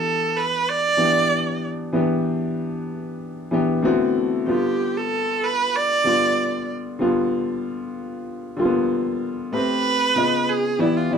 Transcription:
Already playing: grand piano E3 B3 D4 G4, viola A4
0.37 viola B4
0.69 viola D5
0.97 grand piano E3 B3 D4 G4
1.93 grand piano E3 B3 D4 G4
3.51 grand piano E3 B3 D4 G4
3.82 grand piano D3 A3 B3 C4 E4 F#4
4.46 grand piano D3 G3 B3 F4, viola G4
4.97 viola A4
5.44 viola B4
5.76 viola D5
6.04 grand piano D3 G3 B3 F4
6.99 grand piano D3 G3 B3 F4
8.57 grand piano D3 G3 A#3 F4
8.65 grand piano B3
9.52 grand piano A3 C4 G4 B4, viola B4
10.15 grand piano C#3 B3 F4 D#5
10.49 viola G#4
10.79 grand piano E3 B3 G4 D5, viola E4
10.97 viola F4
11.10 grand piano E3 B3 G4 D5, viola E4

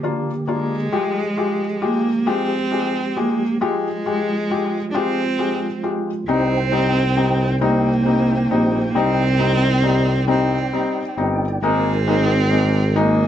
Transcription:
Already playing: tonewheel organ D3 A#3 G4
0.03 felt piano A#3 D4 F4
0.47 cello G#3, felt piano A#3 D4 F4
0.92 tonewheel organ F3 G#3 G4, felt piano G#3 F4 G4
1.37 felt piano G#3 F4 G4
1.82 felt piano G#3 F4 G4, cello A#3
2.26 felt piano G#3 F4 G4, cello C4
2.71 felt piano G#3 F4 G4
3.16 felt piano G#3 F4 G4, cello A#3
3.61 felt piano G#3 F4 G4, cello G#3, tonewheel organ F4
4.06 felt piano G#3 F4 G4
4.50 felt piano G#3 F4 G4
4.91 felt piano G#3 F4 G4, cello D4
4.96 cello C4
5.39 felt piano G#3 F4 G4
5.83 felt piano G#3 F4 G4
6.28 tuba C2, felt piano G3 C4 D#4, cello C4, tonewheel organ D#4 C5 G5
6.72 felt piano G3 C4 D#4
7.17 felt piano G3 C4 D#4
7.61 felt piano G3 C4 D#4, cello A#3
8.05 felt piano G3 C4 D#4
8.51 tuba A#1, felt piano G3 C4 D#4
8.94 tuba C2, felt piano G3 C4 D#4, cello C4, tonewheel organ D5
9.39 felt piano G3 C4 D#4
9.83 felt piano G3 C4 D#4
10.28 felt piano G3 C4 D#4, cello C4
10.73 felt piano G3 C4 D#4
11.17 tuba G1, felt piano G3 C4 D#4
11.62 tuba G#1, felt piano G#3 A#3 D#4, cello C4, tonewheel organ A#4 G#5
12.07 felt piano G#3 A#3 D#4
12.51 felt piano G#3 A#3 D#4
12.95 felt piano G#3 A#3 D#4, cello A#3

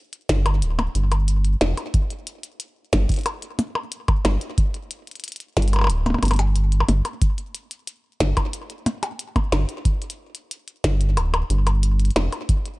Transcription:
0.13 closed hi-hat
0.29 analog synth bass G1, kick, snare, closed hi-hat
0.46 closed hi-hat, percussion blips
0.62 analog synth bass D1, closed hi-hat
0.79 closed hi-hat, percussion blips
0.95 analog synth bass G1, closed hi-hat
1.12 closed hi-hat, percussion blips
1.28 closed hi-hat
1.45 closed hi-hat
1.61 analog synth bass F1, snare, closed hi-hat, percussion blips
1.77 closed hi-hat, percussion blips
1.94 kick, closed hi-hat
2.10 closed hi-hat
2.27 closed hi-hat
2.43 closed hi-hat
2.60 closed hi-hat
2.93 analog synth bass G1, kick, snare, closed hi-hat, percussion blips
3.09 kick, closed hi-hat
3.12 closed hi-hat
3.14 closed hi-hat
3.16 closed hi-hat
3.19 closed hi-hat
3.21 closed hi-hat
3.24 closed hi-hat
3.26 closed hi-hat, percussion blips
3.42 closed hi-hat
3.59 closed hi-hat, percussion blips
3.75 percussion blips
3.92 closed hi-hat
4.08 kick, closed hi-hat, percussion blips
4.25 analog synth bass G1, snare, closed hi-hat, percussion blips
4.41 closed hi-hat
4.58 kick, closed hi-hat
4.74 closed hi-hat
4.91 closed hi-hat
5.07 closed hi-hat
5.11 closed hi-hat
5.16 closed hi-hat
5.20 closed hi-hat
5.24 closed hi-hat
5.28 closed hi-hat
5.32 closed hi-hat
5.36 closed hi-hat
5.40 closed hi-hat
5.57 analog synth bass G1, kick, snare, closed hi-hat
5.62 closed hi-hat
5.68 closed hi-hat
5.73 closed hi-hat, percussion blips
5.76 percussion blips
5.79 percussion blips
5.81 percussion blips
5.84 percussion blips
5.87 analog synth bass D1, closed hi-hat, percussion blips
6.06 closed hi-hat, percussion blips
6.10 percussion blips
6.14 percussion blips
6.19 percussion blips
6.23 analog synth bass G1, closed hi-hat, percussion blips
6.25 closed hi-hat, percussion blips
6.28 closed hi-hat
6.31 closed hi-hat, percussion blips
6.34 closed hi-hat, percussion blips
6.36 closed hi-hat
6.39 closed hi-hat, percussion blips
6.56 closed hi-hat
6.72 closed hi-hat
6.80 percussion blips
6.89 analog synth bass G1, closed hi-hat, percussion blips
7.05 closed hi-hat, percussion blips
7.22 kick, closed hi-hat
7.38 closed hi-hat
7.55 closed hi-hat
7.71 closed hi-hat
7.87 closed hi-hat
8.20 analog synth bass G1, kick, snare, closed hi-hat, percussion blips
8.37 kick, closed hi-hat, percussion blips
8.53 closed hi-hat
8.70 closed hi-hat
8.86 closed hi-hat, percussion blips
9.03 closed hi-hat, percussion blips
9.19 closed hi-hat
9.36 kick, closed hi-hat, percussion blips
9.52 analog synth bass G1, snare, closed hi-hat, percussion blips
9.69 closed hi-hat
9.85 kick, closed hi-hat
10.02 closed hi-hat
10.10 closed hi-hat
10.35 closed hi-hat
10.51 closed hi-hat
10.68 closed hi-hat
10.84 analog synth bass G1, kick, snare, closed hi-hat
11.01 closed hi-hat
11.17 analog synth bass D1, closed hi-hat, percussion blips
11.34 closed hi-hat, percussion blips
11.50 analog synth bass G1, closed hi-hat
11.67 closed hi-hat, percussion blips
11.83 closed hi-hat
12.00 closed hi-hat
12.05 closed hi-hat
12.11 closed hi-hat
12.16 analog synth bass F1, snare, closed hi-hat, percussion blips
12.33 closed hi-hat, percussion blips
12.49 kick, closed hi-hat
12.66 closed hi-hat

